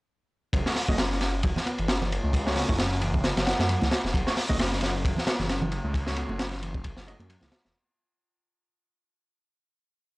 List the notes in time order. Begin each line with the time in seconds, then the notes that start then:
0.53 F#1 F#3, kick, ride
0.66 A3 C#4 F#4 C#5, snare
0.75 snare, open hi-hat
0.88 F#1 A3 C#4 F#4 D#5, kick, high conga
0.98 C#4, snare, ride
1.11 snare
1.21 snare, ride
1.43 F#3, kick, ride
1.56 snare, low conga
1.66 B3, ride
1.78 F#1 E3, ride
1.88 C#4, snare, ride
2.01 E3, snare, low conga
2.12 ride
2.23 C#2 A3
2.33 kick, ride
2.46 A3 C#4 F#4 C#5, snare
2.56 B3, snare, open hi-hat
2.68 F#1 A3 C#4 F#4 C#5, kick, high conga
2.79 C#4, snare, ride
2.92 snare
3.01 E3, ride
3.14 kick, low conga
3.24 snare, ride
3.36 F#1 F#3, snare, ride
3.46 F#5, snare, ride
3.59 F#2 F#5, snare, ride, high conga
3.69 F#3, ride
3.82 C#2 E4, snare, high conga, low conga
3.92 snare, ride
4.04 E1, snare
4.14 F#1 F#3, kick, ride
4.27 A3 C#4 F#4 C#5, snare
4.37 snare, open hi-hat
4.49 F#1 A3 C#4 F#4 D#5, kick, high conga
4.59 C#4, snare, ride
4.73 snare
4.81 snare, ride
5.04 F#3, kick, ride
5.16 snare, low conga
5.26 B3, snare, ride
5.39 F#1 E3, snare
5.49 C#4, snare, ride
5.62 E3, low conga
5.72 ride
5.84 C#2 A3
5.94 kick, ride
6.07 A3 C#4 F#4 C#5, snare
6.17 B3, ride
6.29 F#1 A3 C#4 F#4 C#5, high conga
6.39 C#4, snare, ride
6.52 snare
6.62 E3, ride
6.75 kick, low conga
6.84 kick, ride
6.97 F#1 F#3, snare
7.07 A3 C#4 F#4 D#5, ride
7.20 F#2, ride, high conga
7.29 F#3, ride
7.41 C#2 E4, snare, high conga, low conga
7.52 snare, ride
7.65 E1, snare